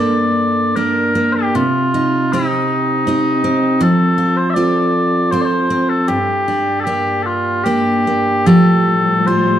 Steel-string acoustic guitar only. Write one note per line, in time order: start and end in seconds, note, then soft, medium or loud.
0.00 1.55 G2 medium
0.00 0.75 A#3 soft
0.00 0.76 D4 soft
0.00 0.76 A4 soft
0.76 1.14 A#3 soft
0.76 1.63 D4 soft
1.15 1.63 A#3 soft
1.55 3.81 C3 medium
1.94 2.32 D#4 soft
2.33 3.07 C4 soft
2.33 3.07 D#4 soft
2.33 3.07 G4 soft
3.07 3.44 C4 soft
3.07 3.89 D#4 soft
3.07 3.89 G4 soft
3.44 4.56 C4 soft
3.81 6.08 F3 medium
4.18 4.56 F4 soft
4.56 5.31 C4 soft
4.56 5.32 F4 soft
4.56 5.32 A4 medium
5.32 5.69 C4 soft
5.32 6.17 F4 soft
5.32 6.17 A4 medium
5.70 6.16 C4 soft
6.08 8.46 G2 medium
6.48 6.85 D4 soft
6.87 7.64 A#3 soft
6.87 7.65 D4 soft
6.87 7.66 G4 soft
7.66 8.06 A#3 soft
7.66 8.55 D4 soft
7.66 8.47 G4 medium
8.07 8.55 A#3 soft
8.46 9.59 F3 medium
8.46 9.59 G4 medium
9.28 9.59 F4 soft